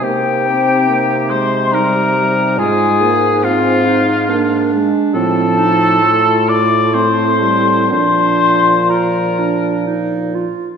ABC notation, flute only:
X:1
M:3/4
L:1/8
Q:1/4=69
K:Fdor
V:1 name="Flute"
g3 c' b2 | a2 f3 z | =a3 d' c'2 | c'2 b2 z2 |]